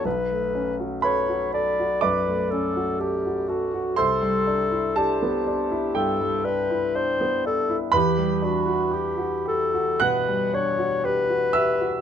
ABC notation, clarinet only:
X:1
M:4/4
L:1/16
Q:1/4=60
K:Em
V:1 name="Clarinet"
B3 z ^c2 d2 B2 A2 G2 F2 | A4 G4 A2 B2 c2 A2 | G2 F2 G2 A2 B2 ^c2 B4 |]